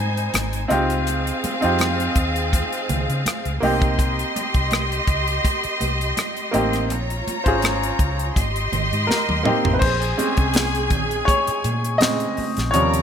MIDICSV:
0, 0, Header, 1, 6, 480
1, 0, Start_track
1, 0, Tempo, 729040
1, 703, Time_signature, 4, 2, 24, 8
1, 8572, End_track
2, 0, Start_track
2, 0, Title_t, "String section"
2, 0, Program_c, 0, 48
2, 0, Note_on_c, 0, 63, 69
2, 0, Note_on_c, 0, 72, 66
2, 0, Note_on_c, 0, 80, 79
2, 438, Note_off_c, 0, 72, 0
2, 439, Note_off_c, 0, 63, 0
2, 439, Note_off_c, 0, 80, 0
2, 465, Note_on_c, 0, 60, 73
2, 466, Note_on_c, 0, 68, 68
2, 467, Note_on_c, 0, 77, 79
2, 2359, Note_off_c, 0, 60, 0
2, 2359, Note_off_c, 0, 68, 0
2, 2360, Note_off_c, 0, 77, 0
2, 2379, Note_on_c, 0, 67, 77
2, 2379, Note_on_c, 0, 75, 75
2, 2381, Note_on_c, 0, 84, 79
2, 4516, Note_off_c, 0, 67, 0
2, 4516, Note_off_c, 0, 75, 0
2, 4517, Note_off_c, 0, 84, 0
2, 4545, Note_on_c, 0, 65, 71
2, 4546, Note_on_c, 0, 73, 67
2, 4548, Note_on_c, 0, 82, 74
2, 5486, Note_off_c, 0, 65, 0
2, 5486, Note_off_c, 0, 73, 0
2, 5488, Note_off_c, 0, 82, 0
2, 5499, Note_on_c, 0, 75, 72
2, 5499, Note_on_c, 0, 84, 80
2, 5500, Note_on_c, 0, 67, 72
2, 6443, Note_off_c, 0, 67, 0
2, 6443, Note_off_c, 0, 75, 0
2, 6443, Note_off_c, 0, 84, 0
2, 6460, Note_on_c, 0, 80, 92
2, 6461, Note_on_c, 0, 68, 88
2, 8116, Note_off_c, 0, 68, 0
2, 8116, Note_off_c, 0, 80, 0
2, 8382, Note_on_c, 0, 82, 93
2, 8383, Note_on_c, 0, 70, 88
2, 8572, Note_off_c, 0, 70, 0
2, 8572, Note_off_c, 0, 82, 0
2, 8572, End_track
3, 0, Start_track
3, 0, Title_t, "Grand piano"
3, 0, Program_c, 1, 0
3, 0, Control_c, 1, 64, 127
3, 0, Note_on_c, 1, 55, 85
3, 0, Note_on_c, 1, 60, 93
3, 0, Note_on_c, 1, 63, 82
3, 0, Note_on_c, 1, 70, 104
3, 450, Note_off_c, 1, 60, 0
3, 450, Note_on_c, 1, 60, 72
3, 456, Note_off_c, 1, 63, 0
3, 456, Note_on_c, 1, 63, 66
3, 466, Note_on_c, 1, 65, 64
3, 473, Control_c, 1, 64, 0
3, 474, Note_off_c, 1, 55, 0
3, 474, Note_on_c, 1, 67, 76
3, 479, Note_off_c, 1, 70, 0
3, 582, Control_c, 1, 64, 127
3, 937, Note_off_c, 1, 60, 0
3, 940, Note_off_c, 1, 63, 0
3, 945, Note_off_c, 1, 65, 0
3, 949, Note_off_c, 1, 67, 0
3, 1059, Note_on_c, 1, 60, 68
3, 1067, Note_on_c, 1, 63, 60
3, 1076, Note_on_c, 1, 65, 63
3, 1084, Note_on_c, 1, 67, 74
3, 1713, Note_off_c, 1, 60, 0
3, 1717, Note_off_c, 1, 63, 0
3, 1721, Note_off_c, 1, 65, 0
3, 1726, Note_off_c, 1, 67, 0
3, 2373, Note_on_c, 1, 58, 76
3, 2383, Note_on_c, 1, 60, 63
3, 2390, Note_on_c, 1, 63, 70
3, 2393, Control_c, 1, 64, 0
3, 2399, Note_on_c, 1, 67, 80
3, 2516, Control_c, 1, 64, 127
3, 3151, Note_off_c, 1, 58, 0
3, 3156, Note_off_c, 1, 60, 0
3, 3159, Note_off_c, 1, 63, 0
3, 3164, Note_off_c, 1, 67, 0
3, 4289, Note_on_c, 1, 58, 73
3, 4298, Note_on_c, 1, 60, 68
3, 4307, Note_on_c, 1, 63, 64
3, 4313, Note_on_c, 1, 67, 80
3, 4537, Note_off_c, 1, 58, 0
3, 4542, Note_off_c, 1, 60, 0
3, 4546, Note_off_c, 1, 63, 0
3, 4549, Note_off_c, 1, 67, 0
3, 4555, Control_c, 1, 64, 0
3, 4652, Control_c, 1, 64, 127
3, 4898, Note_on_c, 1, 72, 66
3, 4908, Note_on_c, 1, 61, 62
3, 4916, Note_on_c, 1, 65, 57
3, 4924, Note_on_c, 1, 68, 75
3, 5497, Note_off_c, 1, 72, 0
3, 5502, Note_off_c, 1, 61, 0
3, 5506, Note_off_c, 1, 65, 0
3, 5510, Note_off_c, 1, 68, 0
3, 5513, Control_c, 1, 64, 0
3, 5640, Control_c, 1, 64, 127
3, 5972, Note_on_c, 1, 70, 70
3, 6211, Note_on_c, 1, 58, 67
3, 6219, Note_on_c, 1, 60, 64
3, 6226, Note_on_c, 1, 63, 65
3, 6236, Note_on_c, 1, 67, 73
3, 6387, Note_off_c, 1, 58, 0
3, 6391, Note_off_c, 1, 60, 0
3, 6395, Note_off_c, 1, 63, 0
3, 6400, Note_off_c, 1, 67, 0
3, 6409, Note_on_c, 1, 71, 52
3, 6430, Note_off_c, 1, 70, 0
3, 6447, Note_on_c, 1, 72, 80
3, 6458, Note_off_c, 1, 71, 0
3, 6473, Control_c, 1, 64, 0
3, 6591, Control_c, 1, 64, 127
3, 6698, Note_on_c, 1, 61, 48
3, 6703, Note_on_c, 1, 56, 49
3, 6705, Note_on_c, 1, 60, 58
3, 7028, Note_off_c, 1, 61, 0
3, 7030, Note_off_c, 1, 56, 0
3, 7031, Note_off_c, 1, 60, 0
3, 7409, Note_on_c, 1, 73, 79
3, 7445, Note_off_c, 1, 72, 0
3, 7889, Note_on_c, 1, 75, 80
3, 7903, Note_on_c, 1, 49, 44
3, 7907, Note_on_c, 1, 56, 45
3, 7909, Note_on_c, 1, 60, 52
3, 7911, Note_off_c, 1, 73, 0
3, 8120, Note_off_c, 1, 49, 0
3, 8122, Note_off_c, 1, 56, 0
3, 8123, Note_off_c, 1, 60, 0
3, 8367, Note_on_c, 1, 73, 84
3, 8380, Note_on_c, 1, 49, 52
3, 8383, Note_on_c, 1, 53, 53
3, 8386, Note_on_c, 1, 48, 59
3, 8386, Note_on_c, 1, 55, 49
3, 8391, Note_off_c, 1, 75, 0
3, 8394, Control_c, 1, 64, 0
3, 8518, Control_c, 1, 64, 127
3, 8572, Note_off_c, 1, 48, 0
3, 8572, Note_off_c, 1, 49, 0
3, 8572, Note_off_c, 1, 53, 0
3, 8572, Note_off_c, 1, 55, 0
3, 8572, Note_off_c, 1, 73, 0
3, 8572, End_track
4, 0, Start_track
4, 0, Title_t, "Fingered electric bass"
4, 0, Program_c, 2, 33
4, 0, Note_on_c, 2, 44, 82
4, 181, Note_off_c, 2, 44, 0
4, 226, Note_on_c, 2, 32, 84
4, 422, Note_off_c, 2, 32, 0
4, 466, Note_on_c, 2, 37, 84
4, 859, Note_off_c, 2, 37, 0
4, 1080, Note_on_c, 2, 41, 70
4, 1365, Note_off_c, 2, 41, 0
4, 1423, Note_on_c, 2, 39, 76
4, 1727, Note_off_c, 2, 39, 0
4, 1909, Note_on_c, 2, 37, 76
4, 2014, Note_off_c, 2, 37, 0
4, 2038, Note_on_c, 2, 49, 75
4, 2127, Note_off_c, 2, 49, 0
4, 2275, Note_on_c, 2, 37, 68
4, 2365, Note_off_c, 2, 37, 0
4, 2386, Note_on_c, 2, 36, 89
4, 2780, Note_off_c, 2, 36, 0
4, 2994, Note_on_c, 2, 36, 77
4, 3282, Note_off_c, 2, 36, 0
4, 3342, Note_on_c, 2, 37, 84
4, 3540, Note_off_c, 2, 37, 0
4, 3829, Note_on_c, 2, 36, 74
4, 4025, Note_off_c, 2, 36, 0
4, 4307, Note_on_c, 2, 33, 77
4, 4550, Note_off_c, 2, 33, 0
4, 4550, Note_on_c, 2, 34, 90
4, 4745, Note_off_c, 2, 34, 0
4, 4914, Note_on_c, 2, 32, 75
4, 5202, Note_off_c, 2, 32, 0
4, 5264, Note_on_c, 2, 37, 79
4, 5462, Note_off_c, 2, 37, 0
4, 5509, Note_on_c, 2, 32, 85
4, 5705, Note_off_c, 2, 32, 0
4, 5745, Note_on_c, 2, 32, 79
4, 5852, Note_off_c, 2, 32, 0
4, 5873, Note_on_c, 2, 44, 82
4, 5964, Note_off_c, 2, 44, 0
4, 6116, Note_on_c, 2, 39, 74
4, 6206, Note_off_c, 2, 39, 0
4, 6356, Note_on_c, 2, 33, 83
4, 6446, Note_off_c, 2, 33, 0
4, 6465, Note_on_c, 2, 34, 101
4, 6662, Note_off_c, 2, 34, 0
4, 6832, Note_on_c, 2, 36, 79
4, 7182, Note_off_c, 2, 36, 0
4, 7182, Note_on_c, 2, 34, 77
4, 7380, Note_off_c, 2, 34, 0
4, 7667, Note_on_c, 2, 46, 77
4, 8060, Note_off_c, 2, 46, 0
4, 8281, Note_on_c, 2, 34, 81
4, 8369, Note_off_c, 2, 34, 0
4, 8392, Note_on_c, 2, 39, 100
4, 8572, Note_off_c, 2, 39, 0
4, 8572, End_track
5, 0, Start_track
5, 0, Title_t, "Muted fingered electric bass strokes"
5, 947, Note_on_c, 9, 29, 40
5, 1013, Note_off_c, 9, 29, 0
5, 2146, Note_on_c, 9, 29, 39
5, 2212, Note_off_c, 9, 29, 0
5, 3717, Note_on_c, 9, 29, 43
5, 3783, Note_off_c, 9, 29, 0
5, 4788, Note_on_c, 9, 29, 42
5, 4854, Note_off_c, 9, 29, 0
5, 5989, Note_on_c, 9, 29, 37
5, 6055, Note_off_c, 9, 29, 0
5, 7560, Note_on_c, 9, 29, 44
5, 7626, Note_off_c, 9, 29, 0
5, 8152, Note_on_c, 9, 29, 40
5, 8218, Note_off_c, 9, 29, 0
5, 8572, End_track
6, 0, Start_track
6, 0, Title_t, "Drums"
6, 114, Note_on_c, 9, 42, 46
6, 180, Note_off_c, 9, 42, 0
6, 222, Note_on_c, 9, 42, 88
6, 224, Note_on_c, 9, 63, 64
6, 232, Note_on_c, 9, 37, 97
6, 288, Note_off_c, 9, 42, 0
6, 290, Note_off_c, 9, 63, 0
6, 298, Note_off_c, 9, 37, 0
6, 349, Note_on_c, 9, 42, 44
6, 415, Note_off_c, 9, 42, 0
6, 463, Note_on_c, 9, 42, 62
6, 472, Note_on_c, 9, 63, 61
6, 529, Note_off_c, 9, 42, 0
6, 538, Note_off_c, 9, 63, 0
6, 592, Note_on_c, 9, 42, 50
6, 658, Note_off_c, 9, 42, 0
6, 703, Note_on_c, 9, 62, 28
6, 704, Note_on_c, 9, 42, 77
6, 769, Note_off_c, 9, 62, 0
6, 770, Note_off_c, 9, 42, 0
6, 836, Note_on_c, 9, 42, 50
6, 902, Note_off_c, 9, 42, 0
6, 947, Note_on_c, 9, 42, 64
6, 949, Note_on_c, 9, 62, 47
6, 1013, Note_off_c, 9, 42, 0
6, 1015, Note_off_c, 9, 62, 0
6, 1069, Note_on_c, 9, 42, 42
6, 1134, Note_off_c, 9, 42, 0
6, 1177, Note_on_c, 9, 42, 70
6, 1187, Note_on_c, 9, 63, 62
6, 1194, Note_on_c, 9, 37, 106
6, 1243, Note_off_c, 9, 42, 0
6, 1253, Note_off_c, 9, 63, 0
6, 1260, Note_off_c, 9, 37, 0
6, 1317, Note_on_c, 9, 42, 50
6, 1382, Note_off_c, 9, 42, 0
6, 1419, Note_on_c, 9, 42, 63
6, 1421, Note_on_c, 9, 36, 78
6, 1485, Note_off_c, 9, 42, 0
6, 1486, Note_off_c, 9, 36, 0
6, 1553, Note_on_c, 9, 42, 47
6, 1619, Note_off_c, 9, 42, 0
6, 1665, Note_on_c, 9, 36, 72
6, 1667, Note_on_c, 9, 62, 41
6, 1668, Note_on_c, 9, 42, 77
6, 1731, Note_off_c, 9, 36, 0
6, 1733, Note_off_c, 9, 62, 0
6, 1734, Note_off_c, 9, 42, 0
6, 1794, Note_on_c, 9, 42, 46
6, 1860, Note_off_c, 9, 42, 0
6, 1905, Note_on_c, 9, 42, 61
6, 1906, Note_on_c, 9, 62, 45
6, 1906, Note_on_c, 9, 64, 64
6, 1971, Note_off_c, 9, 42, 0
6, 1971, Note_off_c, 9, 62, 0
6, 1971, Note_off_c, 9, 64, 0
6, 2039, Note_on_c, 9, 42, 43
6, 2105, Note_off_c, 9, 42, 0
6, 2144, Note_on_c, 9, 63, 61
6, 2148, Note_on_c, 9, 42, 96
6, 2158, Note_on_c, 9, 37, 99
6, 2210, Note_off_c, 9, 63, 0
6, 2214, Note_off_c, 9, 42, 0
6, 2224, Note_off_c, 9, 37, 0
6, 2274, Note_on_c, 9, 42, 44
6, 2340, Note_off_c, 9, 42, 0
6, 2388, Note_on_c, 9, 46, 49
6, 2392, Note_on_c, 9, 63, 65
6, 2454, Note_off_c, 9, 46, 0
6, 2458, Note_off_c, 9, 63, 0
6, 2513, Note_on_c, 9, 36, 93
6, 2515, Note_on_c, 9, 42, 47
6, 2579, Note_off_c, 9, 36, 0
6, 2581, Note_off_c, 9, 42, 0
6, 2626, Note_on_c, 9, 36, 86
6, 2628, Note_on_c, 9, 42, 86
6, 2691, Note_off_c, 9, 36, 0
6, 2694, Note_off_c, 9, 42, 0
6, 2760, Note_on_c, 9, 42, 49
6, 2826, Note_off_c, 9, 42, 0
6, 2871, Note_on_c, 9, 62, 53
6, 2873, Note_on_c, 9, 42, 69
6, 2937, Note_off_c, 9, 62, 0
6, 2939, Note_off_c, 9, 42, 0
6, 2990, Note_on_c, 9, 42, 42
6, 2993, Note_on_c, 9, 36, 73
6, 3056, Note_off_c, 9, 42, 0
6, 3059, Note_off_c, 9, 36, 0
6, 3100, Note_on_c, 9, 42, 69
6, 3108, Note_on_c, 9, 63, 64
6, 3117, Note_on_c, 9, 37, 106
6, 3166, Note_off_c, 9, 42, 0
6, 3174, Note_off_c, 9, 63, 0
6, 3183, Note_off_c, 9, 37, 0
6, 3239, Note_on_c, 9, 42, 47
6, 3305, Note_off_c, 9, 42, 0
6, 3341, Note_on_c, 9, 36, 80
6, 3341, Note_on_c, 9, 42, 71
6, 3407, Note_off_c, 9, 36, 0
6, 3407, Note_off_c, 9, 42, 0
6, 3473, Note_on_c, 9, 42, 47
6, 3539, Note_off_c, 9, 42, 0
6, 3586, Note_on_c, 9, 36, 81
6, 3586, Note_on_c, 9, 62, 41
6, 3588, Note_on_c, 9, 42, 76
6, 3651, Note_off_c, 9, 36, 0
6, 3652, Note_off_c, 9, 62, 0
6, 3654, Note_off_c, 9, 42, 0
6, 3711, Note_on_c, 9, 42, 47
6, 3777, Note_off_c, 9, 42, 0
6, 3822, Note_on_c, 9, 62, 44
6, 3825, Note_on_c, 9, 42, 64
6, 3888, Note_off_c, 9, 62, 0
6, 3891, Note_off_c, 9, 42, 0
6, 3958, Note_on_c, 9, 42, 46
6, 4024, Note_off_c, 9, 42, 0
6, 4063, Note_on_c, 9, 63, 64
6, 4064, Note_on_c, 9, 42, 94
6, 4074, Note_on_c, 9, 37, 100
6, 4129, Note_off_c, 9, 63, 0
6, 4130, Note_off_c, 9, 42, 0
6, 4139, Note_off_c, 9, 37, 0
6, 4191, Note_on_c, 9, 42, 39
6, 4257, Note_off_c, 9, 42, 0
6, 4305, Note_on_c, 9, 42, 64
6, 4310, Note_on_c, 9, 63, 64
6, 4371, Note_off_c, 9, 42, 0
6, 4376, Note_off_c, 9, 63, 0
6, 4433, Note_on_c, 9, 42, 47
6, 4443, Note_on_c, 9, 37, 30
6, 4498, Note_off_c, 9, 42, 0
6, 4509, Note_off_c, 9, 37, 0
6, 4545, Note_on_c, 9, 42, 76
6, 4611, Note_off_c, 9, 42, 0
6, 4676, Note_on_c, 9, 42, 47
6, 4742, Note_off_c, 9, 42, 0
6, 4790, Note_on_c, 9, 62, 51
6, 4791, Note_on_c, 9, 42, 60
6, 4856, Note_off_c, 9, 62, 0
6, 4857, Note_off_c, 9, 42, 0
6, 4911, Note_on_c, 9, 42, 41
6, 4912, Note_on_c, 9, 36, 74
6, 4977, Note_off_c, 9, 42, 0
6, 4978, Note_off_c, 9, 36, 0
6, 5019, Note_on_c, 9, 42, 69
6, 5028, Note_on_c, 9, 63, 66
6, 5036, Note_on_c, 9, 37, 109
6, 5085, Note_off_c, 9, 42, 0
6, 5094, Note_off_c, 9, 63, 0
6, 5102, Note_off_c, 9, 37, 0
6, 5158, Note_on_c, 9, 42, 52
6, 5224, Note_off_c, 9, 42, 0
6, 5262, Note_on_c, 9, 36, 77
6, 5263, Note_on_c, 9, 42, 67
6, 5328, Note_off_c, 9, 36, 0
6, 5328, Note_off_c, 9, 42, 0
6, 5394, Note_on_c, 9, 42, 46
6, 5460, Note_off_c, 9, 42, 0
6, 5506, Note_on_c, 9, 36, 78
6, 5508, Note_on_c, 9, 62, 44
6, 5510, Note_on_c, 9, 42, 82
6, 5572, Note_off_c, 9, 36, 0
6, 5574, Note_off_c, 9, 62, 0
6, 5576, Note_off_c, 9, 42, 0
6, 5635, Note_on_c, 9, 42, 42
6, 5701, Note_off_c, 9, 42, 0
6, 5744, Note_on_c, 9, 62, 46
6, 5744, Note_on_c, 9, 64, 61
6, 5747, Note_on_c, 9, 42, 62
6, 5810, Note_off_c, 9, 62, 0
6, 5810, Note_off_c, 9, 64, 0
6, 5813, Note_off_c, 9, 42, 0
6, 5879, Note_on_c, 9, 42, 42
6, 5945, Note_off_c, 9, 42, 0
6, 5983, Note_on_c, 9, 63, 63
6, 5995, Note_on_c, 9, 38, 48
6, 6049, Note_off_c, 9, 63, 0
6, 6061, Note_off_c, 9, 38, 0
6, 6116, Note_on_c, 9, 48, 53
6, 6182, Note_off_c, 9, 48, 0
6, 6225, Note_on_c, 9, 45, 72
6, 6228, Note_on_c, 9, 63, 65
6, 6291, Note_off_c, 9, 45, 0
6, 6294, Note_off_c, 9, 63, 0
6, 6353, Note_on_c, 9, 43, 83
6, 6419, Note_off_c, 9, 43, 0
6, 6458, Note_on_c, 9, 62, 29
6, 6463, Note_on_c, 9, 49, 84
6, 6464, Note_on_c, 9, 36, 96
6, 6524, Note_off_c, 9, 62, 0
6, 6529, Note_off_c, 9, 49, 0
6, 6530, Note_off_c, 9, 36, 0
6, 6596, Note_on_c, 9, 42, 49
6, 6661, Note_off_c, 9, 42, 0
6, 6706, Note_on_c, 9, 62, 54
6, 6711, Note_on_c, 9, 42, 65
6, 6772, Note_off_c, 9, 62, 0
6, 6776, Note_off_c, 9, 42, 0
6, 6827, Note_on_c, 9, 42, 45
6, 6831, Note_on_c, 9, 36, 75
6, 6893, Note_off_c, 9, 42, 0
6, 6897, Note_off_c, 9, 36, 0
6, 6937, Note_on_c, 9, 42, 77
6, 6946, Note_on_c, 9, 63, 69
6, 6954, Note_on_c, 9, 38, 106
6, 7003, Note_off_c, 9, 42, 0
6, 7011, Note_off_c, 9, 63, 0
6, 7020, Note_off_c, 9, 38, 0
6, 7077, Note_on_c, 9, 42, 51
6, 7142, Note_off_c, 9, 42, 0
6, 7179, Note_on_c, 9, 42, 72
6, 7181, Note_on_c, 9, 36, 90
6, 7185, Note_on_c, 9, 64, 67
6, 7245, Note_off_c, 9, 42, 0
6, 7247, Note_off_c, 9, 36, 0
6, 7251, Note_off_c, 9, 64, 0
6, 7315, Note_on_c, 9, 42, 49
6, 7381, Note_off_c, 9, 42, 0
6, 7426, Note_on_c, 9, 36, 81
6, 7428, Note_on_c, 9, 62, 46
6, 7431, Note_on_c, 9, 42, 82
6, 7492, Note_off_c, 9, 36, 0
6, 7494, Note_off_c, 9, 62, 0
6, 7497, Note_off_c, 9, 42, 0
6, 7554, Note_on_c, 9, 42, 51
6, 7620, Note_off_c, 9, 42, 0
6, 7666, Note_on_c, 9, 42, 70
6, 7666, Note_on_c, 9, 62, 47
6, 7732, Note_off_c, 9, 42, 0
6, 7732, Note_off_c, 9, 62, 0
6, 7799, Note_on_c, 9, 42, 46
6, 7865, Note_off_c, 9, 42, 0
6, 7904, Note_on_c, 9, 63, 67
6, 7906, Note_on_c, 9, 42, 100
6, 7915, Note_on_c, 9, 38, 97
6, 7970, Note_off_c, 9, 63, 0
6, 7971, Note_off_c, 9, 42, 0
6, 7981, Note_off_c, 9, 38, 0
6, 8033, Note_on_c, 9, 42, 42
6, 8099, Note_off_c, 9, 42, 0
6, 8145, Note_on_c, 9, 46, 49
6, 8153, Note_on_c, 9, 63, 69
6, 8211, Note_off_c, 9, 46, 0
6, 8218, Note_off_c, 9, 63, 0
6, 8274, Note_on_c, 9, 42, 51
6, 8285, Note_on_c, 9, 38, 32
6, 8340, Note_off_c, 9, 42, 0
6, 8351, Note_off_c, 9, 38, 0
6, 8382, Note_on_c, 9, 62, 27
6, 8386, Note_on_c, 9, 42, 84
6, 8448, Note_off_c, 9, 62, 0
6, 8452, Note_off_c, 9, 42, 0
6, 8517, Note_on_c, 9, 42, 54
6, 8572, Note_off_c, 9, 42, 0
6, 8572, End_track
0, 0, End_of_file